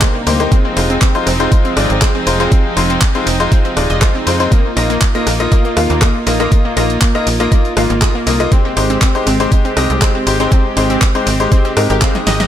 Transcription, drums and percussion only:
0.01 kick loud
0.01 cross-stick medium
0.01 clap loud
0.01 closed hi-hat medium
0.27 open hi-hat loud
0.27 ride medium
0.40 closed hi-hat medium
0.52 kick loud
0.52 closed hi-hat medium
0.77 open hi-hat loud
0.77 ride medium
0.90 closed hi-hat medium
1.01 kick loud
1.01 clap loud
1.01 closed hi-hat medium
1.15 closed hi-hat soft
1.27 cross-stick medium
1.27 open hi-hat loud
1.27 ride medium
1.40 closed hi-hat medium
1.52 kick loud
1.52 closed hi-hat medium
1.65 closed hi-hat soft
1.77 cross-stick medium
1.77 open hi-hat loud
1.77 ride medium
1.90 closed hi-hat medium
2.01 kick loud
2.01 cross-stick medium
2.01 clap loud
2.01 closed hi-hat medium
2.27 open hi-hat loud
2.27 ride medium
2.40 closed hi-hat soft
2.52 kick loud
2.52 closed hi-hat medium
2.77 open hi-hat loud
2.77 ride medium
2.90 closed hi-hat medium
3.01 kick loud
3.01 clap loud
3.01 closed hi-hat medium
3.15 closed hi-hat soft
3.27 open hi-hat loud
3.27 ride medium
3.40 closed hi-hat soft
3.52 kick loud
3.52 closed hi-hat medium
3.65 closed hi-hat soft
3.77 cross-stick medium
3.77 open hi-hat loud
3.77 ride medium
3.90 closed hi-hat medium
4.01 kick loud
4.01 cross-stick medium
4.01 clap loud
4.01 closed hi-hat medium
4.27 open hi-hat loud
4.27 ride medium
4.40 closed hi-hat medium
4.52 kick loud
4.52 closed hi-hat medium
4.77 open hi-hat loud
4.77 ride medium
4.90 closed hi-hat soft
5.01 kick loud
5.01 clap loud
5.01 closed hi-hat medium
5.15 closed hi-hat soft
5.27 cross-stick medium
5.27 open hi-hat loud
5.27 ride medium
5.40 closed hi-hat medium
5.52 kick loud
5.52 closed hi-hat medium
5.65 closed hi-hat soft
5.77 cross-stick medium
5.77 open hi-hat loud
5.77 ride medium
5.90 closed hi-hat medium
6.01 kick loud
6.01 cross-stick medium
6.01 clap loud
6.01 closed hi-hat medium
6.27 open hi-hat loud
6.27 ride medium
6.40 closed hi-hat soft
6.52 kick loud
6.52 closed hi-hat medium
6.77 open hi-hat loud
6.77 ride medium
6.90 closed hi-hat medium
7.01 kick loud
7.01 clap loud
7.01 closed hi-hat medium
7.15 closed hi-hat soft
7.27 open hi-hat loud
7.27 ride medium
7.40 closed hi-hat medium
7.52 kick loud
7.52 closed hi-hat medium
7.65 closed hi-hat soft
7.77 cross-stick medium
7.77 open hi-hat loud
7.77 ride medium
7.90 closed hi-hat medium
8.01 kick loud
8.01 cross-stick medium
8.01 clap loud
8.01 closed hi-hat medium
8.27 open hi-hat loud
8.27 ride medium
8.40 closed hi-hat medium
8.52 kick loud
8.52 closed hi-hat medium
8.77 open hi-hat loud
8.77 ride medium
8.90 closed hi-hat medium
9.01 kick loud
9.01 clap loud
9.01 closed hi-hat medium
9.15 closed hi-hat soft
9.27 cross-stick medium
9.27 open hi-hat loud
9.27 ride medium
9.40 closed hi-hat medium
9.52 kick loud
9.52 closed hi-hat medium
9.65 closed hi-hat soft
9.77 cross-stick medium
9.77 open hi-hat loud
9.77 ride medium
9.90 closed hi-hat medium
10.01 kick loud
10.01 cross-stick medium
10.01 clap loud
10.01 closed hi-hat medium
10.27 open hi-hat loud
10.27 ride medium
10.40 closed hi-hat medium
10.52 kick loud
10.52 closed hi-hat medium
10.77 open hi-hat loud
10.77 ride medium
10.90 closed hi-hat medium
11.01 kick loud
11.01 clap loud
11.01 closed hi-hat medium
11.15 closed hi-hat soft
11.27 open hi-hat loud
11.27 ride medium
11.40 closed hi-hat medium
11.52 kick loud
11.52 closed hi-hat medium
11.65 closed hi-hat soft
11.77 cross-stick medium
11.77 open hi-hat loud
11.77 ride medium
11.90 closed hi-hat medium
12.01 kick loud
12.01 cross-stick medium
12.01 clap loud
12.01 closed hi-hat medium
12.15 snare medium
12.15 closed hi-hat soft
12.27 snare medium
12.27 open hi-hat loud
12.27 ride medium
12.40 snare medium
12.40 closed hi-hat medium

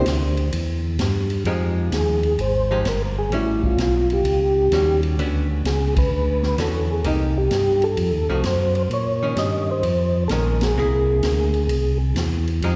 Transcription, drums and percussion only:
0.06 snare medium
0.06 hi-hat pedal medium
0.06 ride medium
0.37 ride medium
0.53 ride medium
0.99 snare medium
0.99 hi-hat pedal soft
0.99 ride medium
1.30 ride soft
1.45 ride medium
1.92 snare medium
1.92 hi-hat pedal medium
1.92 ride medium
2.23 ride soft
2.39 ride soft
2.85 snare medium
2.85 hi-hat pedal soft
2.85 ride medium
3.32 ride medium
3.63 kick medium
3.78 snare medium
3.78 hi-hat pedal medium
3.78 ride medium
4.10 ride soft
4.25 ride medium
4.72 snare medium
4.72 hi-hat pedal medium
4.72 ride medium
5.03 ride soft
5.19 ride soft
5.65 snare medium
5.65 hi-hat pedal medium
5.65 ride medium
5.96 kick medium
5.96 ride medium
6.43 snare soft
6.58 snare medium
6.58 hi-hat pedal medium
6.58 ride medium
7.04 ride medium
7.51 snare medium
7.51 hi-hat pedal soft
7.51 ride medium
7.82 ride soft
7.97 ride medium
8.44 snare medium
8.44 hi-hat pedal medium
8.44 ride medium
8.75 ride soft
8.91 ride medium
9.37 snare medium
9.37 hi-hat pedal medium
9.37 ride medium
9.83 ride medium
10.29 snare medium
10.29 hi-hat pedal medium
10.29 ride medium
10.61 snare medium
10.61 ride medium
11.23 snare medium
11.23 hi-hat pedal medium
11.23 ride medium
11.54 ride soft
11.69 ride medium
12.16 snare medium
12.16 hi-hat pedal medium
12.16 ride medium
12.47 ride soft
12.62 ride medium

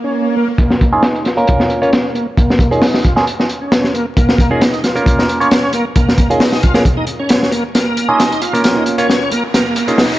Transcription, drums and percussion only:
0.58 kick loud
0.58 closed hi-hat medium
0.70 snare soft
0.81 kick medium
0.81 closed hi-hat medium
1.03 snare loud
1.03 closed hi-hat medium
1.15 closed hi-hat soft
1.25 snare soft
1.25 closed hi-hat medium
1.38 closed hi-hat soft
1.47 kick loud
1.47 closed hi-hat medium
1.60 snare medium
1.70 closed hi-hat medium
1.83 closed hi-hat soft
1.93 snare loud
1.93 closed hi-hat medium
2.15 closed hi-hat medium
2.37 kick loud
2.37 closed hi-hat medium
2.50 snare medium
2.59 kick loud
2.59 closed hi-hat medium
2.72 closed hi-hat soft
2.82 snare loud
2.82 open hi-hat medium
2.94 snare medium
3.04 kick medium
3.04 closed hi-hat medium
3.17 snare soft
3.27 closed hi-hat medium
3.40 snare soft
3.49 closed hi-hat medium
3.72 snare loud
3.72 closed hi-hat medium
3.84 snare soft
3.95 closed hi-hat medium
4.17 kick loud
4.17 closed hi-hat medium
4.29 snare medium
4.38 kick medium
4.38 closed hi-hat medium
4.61 snare loud
4.61 closed hi-hat medium
4.74 closed hi-hat soft
4.84 snare soft
4.84 closed hi-hat medium
4.96 closed hi-hat soft
5.06 kick loud
5.06 closed hi-hat medium
5.19 snare medium
5.29 closed hi-hat medium
5.41 closed hi-hat soft
5.51 snare loud
5.51 closed hi-hat medium
5.73 closed hi-hat medium
5.96 kick loud
5.96 closed hi-hat medium
6.09 snare soft
6.18 kick medium
6.18 closed hi-hat medium
6.31 closed hi-hat soft
6.40 snare loud
6.40 open hi-hat medium
6.52 snare medium
6.63 kick medium
6.63 closed hi-hat medium
6.74 snare medium
6.85 kick medium
6.85 closed hi-hat medium
7.07 closed hi-hat medium
7.29 snare loud
7.29 closed hi-hat medium
7.43 snare soft
7.52 closed hi-hat medium
7.75 snare medium
7.75 closed hi-hat medium
7.97 closed hi-hat medium
8.20 snare soft
8.20 closed hi-hat medium
8.32 closed hi-hat soft
8.42 closed hi-hat medium
8.55 closed hi-hat soft
8.64 snare medium
8.64 closed hi-hat medium
8.86 closed hi-hat medium
8.98 closed hi-hat soft
9.10 snare medium
9.10 closed hi-hat medium
9.31 closed hi-hat medium
9.54 snare medium
9.54 closed hi-hat loud
9.76 closed hi-hat medium
9.88 closed hi-hat soft
9.98 snare medium
9.98 open hi-hat medium

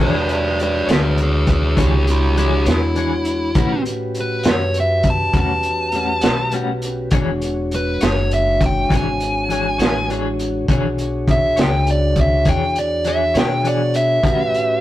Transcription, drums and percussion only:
0.29 closed hi-hat medium
0.59 closed hi-hat soft
0.88 snare loud
0.88 closed hi-hat medium
1.18 closed hi-hat medium
1.47 kick medium
1.47 closed hi-hat medium
1.77 kick medium
1.77 closed hi-hat medium
2.07 closed hi-hat medium
2.37 closed hi-hat medium
2.66 snare medium
2.66 closed hi-hat medium
2.96 closed hi-hat medium
3.25 closed hi-hat medium
3.55 kick medium
3.55 closed hi-hat medium
3.86 closed hi-hat medium
4.15 closed hi-hat soft
4.43 snare medium
4.43 closed hi-hat medium
4.74 closed hi-hat medium
5.03 kick medium
5.03 closed hi-hat medium
5.33 kick medium
5.33 closed hi-hat medium
5.63 closed hi-hat medium
5.92 closed hi-hat medium
6.21 snare medium
6.21 closed hi-hat medium
6.51 closed hi-hat medium
6.82 closed hi-hat medium
7.11 kick medium
7.11 closed hi-hat medium
7.42 closed hi-hat medium
7.71 closed hi-hat medium
8.01 snare medium
8.01 closed hi-hat medium
8.31 closed hi-hat medium
8.61 kick medium
8.61 closed hi-hat medium
8.90 kick medium
8.90 closed hi-hat medium
9.20 closed hi-hat medium
9.50 closed hi-hat medium
9.79 snare medium
9.79 closed hi-hat medium
10.10 closed hi-hat soft
10.39 closed hi-hat medium
10.68 kick medium
10.68 closed hi-hat medium
10.98 closed hi-hat medium
11.28 kick medium
11.28 closed hi-hat medium
11.57 snare medium
11.57 closed hi-hat medium
11.87 closed hi-hat medium
12.16 kick medium
12.16 closed hi-hat medium
12.45 kick medium
12.45 closed hi-hat medium
12.75 closed hi-hat medium
13.04 closed hi-hat medium
13.35 snare medium
13.35 closed hi-hat medium
13.65 closed hi-hat medium
13.94 closed hi-hat medium
14.24 kick medium
14.24 closed hi-hat medium
14.54 closed hi-hat soft

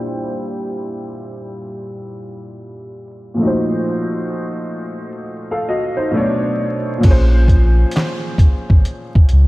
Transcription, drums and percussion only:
7.03 kick loud
7.03 closed hi-hat medium
7.03 crash medium
7.48 kick medium
7.48 closed hi-hat medium
7.91 closed hi-hat loud
7.97 snare loud
7.97 clap medium
8.38 kick medium
8.38 closed hi-hat medium
8.70 kick medium
8.85 closed hi-hat medium
9.15 kick medium
9.29 closed hi-hat medium

